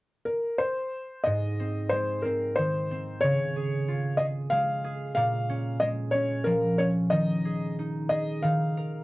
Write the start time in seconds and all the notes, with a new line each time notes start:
0.25 A#4
0.58 C5
1.24 G#2 D#5
1.60 C4
1.89 G#3 C5
2.22 C4 A#4
2.56 D#3 C5
2.91 C4
3.21 C#3 C#5
3.56 G#4
3.88 F4
4.17 G#4 D#5
4.50 G#3 F5
4.84 G#4
5.15 A#2 F5
5.49 C#4
5.80 G#3 D#5
6.11 C#4 C#5
6.44 F3 A#4
6.78 C#4 C#5
7.10 D#3 D#5
7.45 G#4
7.79 D#4
8.09 G#4 D#5
8.43 D#3 F5
8.77 A#4